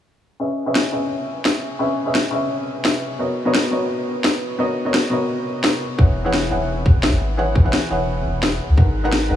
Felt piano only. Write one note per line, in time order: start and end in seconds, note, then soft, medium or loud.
0.40 0.65 C#4 medium
0.40 0.65 G#4 medium
0.40 0.65 B4 medium
0.40 0.65 D#5 medium
0.40 0.65 E5 medium
0.66 0.90 C#4 medium
0.66 0.91 G#4 medium
0.66 0.91 B4 medium
0.66 0.91 D#5 medium
0.66 0.91 E5 loud
0.92 1.03 C#4 medium
0.92 1.03 G#4 medium
0.92 1.03 B4 medium
0.92 1.03 D#5 medium
0.92 1.03 E5 medium
1.79 2.04 C#4 medium
1.79 2.04 G#4 medium
1.79 2.04 B4 medium
1.79 2.05 D#5 medium
1.79 2.05 E5 medium
2.06 2.29 C#4 medium
2.06 2.30 G#4 medium
2.06 2.30 B4 medium
2.06 2.31 D#5 medium
2.06 2.31 E5 medium
2.31 3.17 C#4 medium
2.31 3.17 G#4 medium
2.31 3.18 B4 medium
2.31 3.18 D#5 medium
2.31 3.18 E5 medium
3.19 3.44 B3 medium
3.19 3.44 F#4 medium
3.19 3.44 A#4 medium
3.19 3.44 C#5 medium
3.19 3.44 D#5 medium
3.45 3.69 B3 medium
3.45 3.70 F#4 medium
3.45 3.70 A#4 medium
3.45 3.70 C#5 medium
3.45 3.70 D#5 medium
3.71 3.82 B3 medium
3.71 3.82 F#4 medium
3.71 3.82 A#4 medium
3.71 3.82 C#5 medium
3.71 3.83 D#5 medium
4.58 4.83 B3 medium
4.58 4.83 F#4 medium
4.58 4.83 A#4 medium
4.58 4.84 C#5 medium
4.58 4.84 D#5 medium
4.85 5.08 B3 medium
4.85 5.09 F#4 medium
4.85 5.09 A#4 medium
4.85 5.10 C#5 medium
4.85 5.10 D#5 medium
5.10 5.79 B3 medium
5.10 5.80 F#4 medium
5.10 5.80 A#4 medium
5.10 5.81 C#5 medium
5.10 5.81 D#5 medium
5.98 6.23 E3 medium
5.98 6.23 E4 medium
5.98 6.23 G#4 medium
5.98 6.23 C#5 medium
5.98 6.23 F#5 medium
6.24 6.49 E3 medium
6.24 6.49 E4 medium
6.24 6.49 G#4 medium
6.24 6.49 C#5 medium
6.24 6.49 F#5 medium
6.50 6.61 E3 medium
6.50 6.61 E4 medium
6.50 6.61 G#4 medium
6.50 6.61 C#5 medium
6.50 6.62 F#5 medium
7.37 7.62 E3 medium
7.37 7.62 E4 medium
7.37 7.62 G#4 medium
7.37 7.63 C#5 medium
7.37 7.63 F#5 medium
7.64 7.87 E3 medium
7.64 7.88 E4 medium
7.64 7.89 G#4 medium
7.64 7.89 C#5 medium
7.64 7.89 F#5 medium
7.89 8.75 E3 medium
7.89 8.75 E4 medium
7.89 8.76 G#4 medium
7.89 8.76 C#5 medium
7.89 8.77 F#5 medium
8.77 9.02 G#3 medium
8.77 9.02 D#4 medium
8.77 9.02 A#4 medium
8.77 9.02 B4 medium
8.77 9.03 F#5 medium
9.03 9.28 G#3 medium
9.03 9.28 D#4 medium
9.03 9.28 A#4 medium
9.03 9.28 B4 medium
9.03 9.28 F#5 loud
9.29 9.36 G#3 medium
9.29 9.36 D#4 medium
9.29 9.36 A#4 medium
9.29 9.36 B4 medium
9.29 9.36 F#5 medium